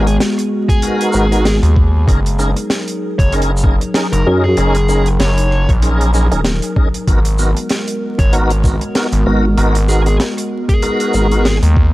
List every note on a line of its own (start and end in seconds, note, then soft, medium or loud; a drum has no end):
0.00 0.18 G#1 loud
0.00 2.03 G#3 medium
0.00 2.04 B3 medium
0.00 2.03 F#4 medium
0.00 7.04 G#4 medium
0.07 0.15 G#4 medium
0.07 closed hi-hat medium
0.20 snare loud
0.20 closed hi-hat medium
0.38 cross-stick soft
0.38 closed hi-hat medium
0.69 1.56 G#4 medium
0.69 kick loud
0.69 closed hi-hat medium
0.82 1.27 B3 medium
0.82 1.27 D#4 medium
0.82 1.27 F#4 medium
0.82 1.27 A#4 medium
0.82 closed hi-hat medium
1.01 closed hi-hat medium
1.13 1.60 G#1 medium
1.13 shaker medium
1.31 1.47 B3 medium
1.31 1.47 D#4 medium
1.31 1.47 F#4 medium
1.31 1.47 A#4 medium
1.31 closed hi-hat medium
1.45 snare loud
1.45 closed hi-hat loud
1.63 2.06 D#2 loud
1.63 closed hi-hat medium
1.76 kick loud
2.08 2.54 F#1 loud
2.08 7.04 F#3 medium
2.08 2.20 C#4 medium
2.08 2.20 D#4 medium
2.08 7.04 D#4 medium
2.08 2.20 G#4 medium
2.08 2.20 A#4 medium
2.08 11.94 A#4 medium
2.08 kick loud
2.08 closed hi-hat medium
2.26 closed hi-hat medium
2.39 2.51 C#4 medium
2.39 2.51 D#4 medium
2.39 2.51 G#4 medium
2.39 2.51 A#4 medium
2.39 shaker medium
2.56 closed hi-hat medium
2.70 snare loud
2.70 closed hi-hat medium
2.88 closed hi-hat medium
3.19 3.79 F#1 medium
3.19 3.31 C#5 medium
3.19 kick loud
3.19 closed hi-hat medium
3.32 3.52 C#4 loud
3.32 3.52 D#4 medium
3.32 3.52 G#4 medium
3.32 3.52 A#4 loud
3.32 closed hi-hat medium
3.42 closed hi-hat medium
3.57 shaker medium
3.64 3.76 C#4 medium
3.64 3.76 D#4 medium
3.64 3.76 G#4 medium
3.64 3.76 A#4 loud
3.64 kick loud
3.81 closed hi-hat medium
3.94 4.07 C#4 medium
3.94 4.07 D#4 medium
3.94 4.07 G#4 medium
3.94 4.07 A#4 medium
3.94 snare loud
3.94 closed hi-hat medium
4.12 4.24 F#1 loud
4.12 4.25 A#4 medium
4.12 closed hi-hat medium
4.26 4.56 F#2 loud
4.26 4.45 C#4 medium
4.26 4.45 D#4 medium
4.26 4.45 G#4 medium
4.26 4.45 A#4 loud
4.44 5.07 G#4 medium
4.57 5.18 F#1 loud
4.57 4.77 C#4 medium
4.57 4.77 D#4 medium
4.57 4.77 G#4 medium
4.57 4.77 A#4 loud
4.57 closed hi-hat medium
4.75 closed hi-hat medium
4.89 5.08 C#4 medium
4.89 5.08 D#4 medium
4.89 5.08 G#4 medium
4.89 5.08 A#4 medium
4.89 shaker medium
5.06 closed hi-hat medium
5.20 5.66 F#1 loud
5.20 5.69 C#5 medium
5.20 snare loud
5.20 closed hi-hat medium
5.38 closed hi-hat medium
5.51 cross-stick soft
5.69 6.29 A#1 loud
5.69 kick loud
5.69 closed hi-hat soft
5.82 6.11 C#4 medium
5.82 6.11 D#4 medium
5.82 6.11 G#4 medium
5.82 6.11 A#4 medium
5.82 closed hi-hat medium
6.01 closed hi-hat medium
6.14 6.27 C#4 medium
6.14 6.27 D#4 medium
6.14 6.27 G#4 medium
6.14 6.27 A#4 loud
6.14 shaker medium
6.31 6.60 D#1 medium
6.31 6.41 C#4 medium
6.31 6.41 D#4 medium
6.31 6.41 G#4 medium
6.31 6.41 A#4 medium
6.31 closed hi-hat medium
6.44 snare loud
6.44 closed hi-hat medium
6.62 closed hi-hat medium
6.76 6.89 C#4 medium
6.76 6.89 D#4 medium
6.76 6.89 G#4 medium
6.76 6.89 A#4 medium
6.76 kick loud
6.94 closed hi-hat medium
7.08 7.54 G#1 loud
7.08 11.94 G#3 medium
7.08 7.20 B3 medium
7.08 11.94 B3 medium
7.08 7.20 D#4 medium
7.08 7.20 F#4 medium
7.08 11.94 F#4 medium
7.08 7.20 A#4 medium
7.08 kick loud
7.08 closed hi-hat medium
7.25 closed hi-hat medium
7.39 7.51 B3 medium
7.39 7.51 D#4 medium
7.39 7.51 F#4 medium
7.39 7.51 A#4 medium
7.39 shaker medium
7.57 closed hi-hat medium
7.69 snare loud
7.69 closed hi-hat medium
7.88 closed hi-hat medium
8.19 8.79 G#1 medium
8.19 8.31 C#5 medium
8.19 kick loud
8.19 closed hi-hat soft
8.33 8.52 B3 loud
8.33 8.52 D#4 medium
8.33 8.52 F#4 medium
8.33 8.52 A#4 loud
8.33 closed hi-hat medium
8.50 closed hi-hat medium
8.64 8.76 B3 medium
8.64 8.76 D#4 medium
8.64 8.76 F#4 medium
8.64 8.76 A#4 loud
8.64 kick loud
8.64 shaker medium
8.81 closed hi-hat medium
8.95 9.07 B3 medium
8.95 9.07 D#4 medium
8.95 9.07 F#4 medium
8.95 9.07 A#4 medium
8.95 snare loud
8.95 closed hi-hat medium
9.12 9.24 G#1 loud
9.12 closed hi-hat medium
9.26 9.56 G#1 loud
9.26 9.45 B3 medium
9.26 9.46 D#4 medium
9.26 9.46 F#4 medium
9.26 9.46 A#4 loud
9.57 10.18 G#1 loud
9.57 9.77 B3 medium
9.57 9.77 D#4 medium
9.57 9.77 F#4 medium
9.57 9.77 A#4 loud
9.57 closed hi-hat medium
9.75 closed hi-hat medium
9.89 10.08 B3 medium
9.89 10.08 D#4 medium
9.89 10.08 F#4 medium
9.89 10.00 G#4 medium
9.89 10.08 A#4 medium
9.89 shaker medium
10.06 10.15 G#4 medium
10.06 closed hi-hat medium
10.20 snare loud
10.20 closed hi-hat medium
10.37 cross-stick soft
10.37 closed hi-hat medium
10.69 11.56 G#4 loud
10.69 kick loud
10.69 closed hi-hat soft
10.82 11.27 B3 medium
10.82 11.27 D#4 medium
10.82 11.27 F#4 medium
10.82 11.27 A#4 medium
10.82 closed hi-hat medium
11.00 closed hi-hat medium
11.14 11.60 G#1 loud
11.14 shaker medium
11.31 11.47 B3 medium
11.31 11.47 D#4 medium
11.31 11.47 F#4 medium
11.31 11.47 A#4 medium
11.31 closed hi-hat soft
11.45 snare loud
11.45 closed hi-hat medium
11.63 11.94 D#2 loud
11.63 closed hi-hat medium
11.76 kick loud